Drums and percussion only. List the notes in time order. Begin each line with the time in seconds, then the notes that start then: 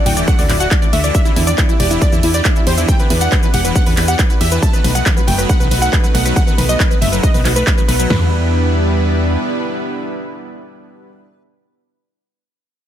0.06 open hi-hat, ride
0.17 closed hi-hat, shaker
0.28 kick, closed hi-hat, shaker
0.39 open hi-hat, shaker
0.50 clap, open hi-hat, ride
0.60 closed hi-hat, shaker
0.71 kick, clap, closed hi-hat, shaker
0.82 closed hi-hat, shaker
0.93 open hi-hat, ride
1.04 closed hi-hat, shaker
1.15 kick, closed hi-hat, shaker
1.26 closed hi-hat, shaker
1.36 open hi-hat, ride
1.47 closed hi-hat, shaker
1.58 kick, clap, closed hi-hat, shaker
1.69 closed hi-hat, shaker
1.80 open hi-hat, ride
1.91 closed hi-hat, shaker
2.02 kick, closed hi-hat, shaker
2.12 closed hi-hat, shaker
2.23 open hi-hat, ride
2.34 closed hi-hat, shaker
2.45 kick, clap, closed hi-hat, shaker
2.56 closed hi-hat, shaker
2.67 open hi-hat, ride
2.78 closed hi-hat, shaker
2.88 kick, closed hi-hat, shaker
2.99 closed hi-hat, shaker
3.10 open hi-hat, ride
3.21 closed hi-hat, shaker
3.32 kick, clap, closed hi-hat, shaker
3.43 closed hi-hat, shaker
3.54 open hi-hat, ride
3.65 closed hi-hat, shaker
3.76 kick, closed hi-hat, shaker
3.86 open hi-hat, shaker
3.97 clap, open hi-hat, ride
4.08 closed hi-hat, shaker
4.19 kick, clap, closed hi-hat, shaker
4.30 closed hi-hat, shaker
4.41 open hi-hat, ride
4.52 closed hi-hat, shaker
4.62 kick, closed hi-hat, shaker
4.74 closed hi-hat, shaker
4.84 open hi-hat, ride
4.95 closed hi-hat, shaker
5.06 kick, clap, closed hi-hat, shaker
5.17 closed hi-hat, shaker
5.28 open hi-hat, ride
5.39 closed hi-hat, shaker
5.49 kick, closed hi-hat, shaker
5.61 closed hi-hat, shaker
5.71 open hi-hat, ride
5.82 closed hi-hat, shaker
5.93 kick, clap, closed hi-hat, shaker
6.04 closed hi-hat, shaker
6.15 open hi-hat, ride
6.26 closed hi-hat, shaker
6.36 kick, closed hi-hat, shaker
6.48 closed hi-hat, shaker
6.58 open hi-hat, ride
6.69 closed hi-hat, shaker
6.80 kick, clap, closed hi-hat, shaker
6.91 closed hi-hat, shaker
7.02 open hi-hat, ride
7.13 closed hi-hat, shaker
7.23 kick, closed hi-hat, shaker
7.34 open hi-hat, shaker
7.45 clap, open hi-hat, ride
7.56 closed hi-hat, shaker
7.67 kick, clap, closed hi-hat, shaker
7.78 closed hi-hat, shaker
7.89 open hi-hat, ride
8.00 closed hi-hat, shaker
8.10 snare, floor tom